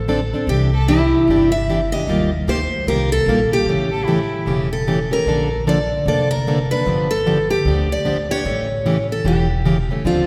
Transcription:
Already playing: upright bass A1, steel-string acoustic guitar A4
0.08 steel-string acoustic guitar D3 F3 C4 D4 A4
0.33 steel-string acoustic guitar C4 D4 A4
0.47 upright bass C2, steel-string acoustic guitar C3 E3 D4 G4
0.74 violin A4
0.88 steel-string acoustic guitar C3 E3 D4 E4 G4, violin G4
1.28 upright bass G1, steel-string acoustic guitar C3 E3 D4 G4
1.52 steel-string acoustic guitar E5
1.70 steel-string acoustic guitar C3 E3 D4 G4
1.92 steel-string acoustic guitar E3 D4 G4 D#5
2.07 upright bass D#2, steel-string acoustic guitar D#3 G3 A#3 F4 G4
2.47 upright bass D2, steel-string acoustic guitar D#3 G3 A#3 F4 G4 C5
2.87 upright bass C2, steel-string acoustic guitar D#3 G3 A#3 F4 G4 A#4
3.12 steel-string acoustic guitar A4
3.26 upright bass A#1, steel-string acoustic guitar D#3 G3 A#3 F4 G4
3.52 steel-string acoustic guitar A#3 F4 G4
3.66 upright bass A1, steel-string acoustic guitar C#3 E3 A3 C#4 G4
3.91 violin A4
4.05 steel-string acoustic guitar C#3 E3 A3 C#4 G4, violin E4
4.46 upright bass E1, steel-string acoustic guitar C#3 E3 A3 C#4 G4
4.73 steel-string acoustic guitar A4
4.87 steel-string acoustic guitar C#3 E3 A3 C#4 G4
5.11 steel-string acoustic guitar A3 C#4 G4 A#4
5.26 upright bass A#1, steel-string acoustic guitar D3 F3 A#3 D4 A4
5.67 steel-string acoustic guitar D3 F3 A#3 D4 A4 D5
6.06 upright bass F1, steel-string acoustic guitar D3 F3 A#3 D4 A4 D5
6.31 steel-string acoustic guitar A#4
6.47 steel-string acoustic guitar D3 F3 A#3 D4 A4
6.71 steel-string acoustic guitar A#3 D4 A4 B4
6.86 upright bass G1, steel-string acoustic guitar D3 F3 B3 D4 G4
7.11 steel-string acoustic guitar A4
7.26 steel-string acoustic guitar D3 F3 B3 D4 G4
7.50 steel-string acoustic guitar G4
7.65 upright bass D2, steel-string acoustic guitar D3 F3 B3 D4 G4
7.92 steel-string acoustic guitar D5
8.05 steel-string acoustic guitar D3 F3 B3 D4 G4
8.31 steel-string acoustic guitar B3 D4 G4 C#5
8.45 upright bass A1, steel-string acoustic guitar C#3 E3 A3 C#4 G4
8.86 steel-string acoustic guitar C#3 E3 A3 C#4 G4
9.12 steel-string acoustic guitar A4
9.24 upright bass E1, steel-string acoustic guitar C#3 E3 A3 C#4 G4
9.65 steel-string acoustic guitar C#3 E3 A3 C#4 G4
9.91 steel-string acoustic guitar A3 C#4 G4
10.05 upright bass D2, steel-string acoustic guitar D3 F3 C4 D4 F4 A4

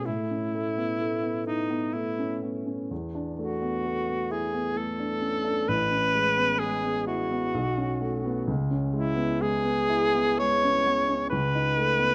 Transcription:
0.05 grand piano A2, alto saxophone E4
0.31 grand piano C#4
0.55 grand piano A3
0.77 grand piano B3
1.01 grand piano A3
1.23 grand piano B3
1.47 alto saxophone D#4, grand piano E4
1.70 grand piano B3
1.93 grand piano A3, alto saxophone E4
2.19 grand piano C#4
2.43 grand piano B3
2.66 grand piano C#4
2.91 grand piano E2
3.15 grand piano D4
3.39 grand piano A3, alto saxophone F#4
3.62 grand piano B3
3.85 grand piano A3
4.09 grand piano B3
4.31 grand piano E4, alto saxophone G#4
4.54 grand piano B3
4.76 grand piano A3, alto saxophone A4
5.00 grand piano D4
5.22 grand piano C#4
5.45 grand piano D4
5.68 grand piano A1, alto saxophone B4
5.91 grand piano C#4
6.15 grand piano G#3
6.37 grand piano B3
6.59 grand piano G#3, alto saxophone G#4
6.84 grand piano B3
7.07 grand piano E4, alto saxophone F#4
7.31 grand piano B3
7.54 grand piano B1
7.77 grand piano C#4
8.01 grand piano A3
8.25 grand piano B3
8.47 grand piano C#2
8.71 grand piano C#4
8.93 grand piano G#3, alto saxophone E4
9.16 grand piano B3
9.40 grand piano G#3, alto saxophone G#4
9.64 grand piano B3
9.89 grand piano E4
10.15 grand piano B3
10.39 grand piano G#3, alto saxophone C#5
10.64 grand piano C#4
10.87 grand piano B3
11.09 grand piano C#4
11.30 grand piano C#2, alto saxophone B4
11.55 grand piano D#4
11.77 grand piano A3
11.99 grand piano B3

